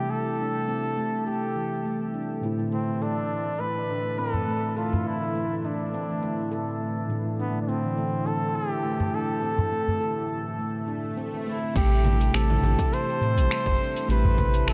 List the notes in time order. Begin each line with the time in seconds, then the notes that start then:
Already playing: C3 G3 A3 E4 G4
0.10 A3 A4
0.40 D4
0.69 C4
0.98 A3
1.27 G4 A4
1.56 E3
1.85 A3
2.14 D4
2.41 A2 D3 E3 A3 C4 E4
2.45 E4
2.59 E3
2.72 A3 C4
3.02 D4 A4
3.60 A3 B4
3.90 D4
4.19 C4 A4
4.34 E3, udu
4.48 A3
4.77 F4 A4
4.93 udu
5.07 E4
5.35 A3
5.58 E4
5.64 D4
5.94 C4
6.09 E3
6.23 A3
6.51 A4
7.08 A2 D3 A3 E4
7.39 B3 D4
7.62 D4
7.69 C4
7.84 E3
7.97 A3
8.26 A4
8.56 G4
8.85 A3
9.00 udu
9.14 D4 A4
9.43 C4
9.58 E3, udu
9.72 A3
9.88 udu
10.01 A4
10.59 A3, swell
10.88 D4
11.17 C4
11.34 E3
11.47 A3 E4
11.74 A1 C3 G3 A3 E4 G4, kick, closed hi-hat, crash, shaker
11.78 G4
11.92 shaker
12.05 D4, low conga, shaker
12.21 closed hi-hat, shaker
12.34 A1 C4 A4, finger snap, closed hi-hat, shaker
12.50 E3, low conga, shaker
12.61 A1 C3 A3, low conga, shaker
12.65 G4
12.79 kick, closed hi-hat, shaker
12.92 A4 C5, closed hi-hat, shaker
13.09 shaker
13.21 A2, shaker
13.37 A1, closed hi-hat, shaker
13.51 A3, finger snap, closed hi-hat, shaker
13.66 G1, kick, udu, shaker
13.79 D4, shaker
13.96 closed hi-hat, shaker
14.08 A1 C3 A3 C4 G4 B4, closed hi-hat, shaker
14.25 E3, udu, shaker
14.38 A3, kick, low conga, shaker
14.54 closed hi-hat, shaker
14.67 A1 A4, finger snap, closed hi-hat, shaker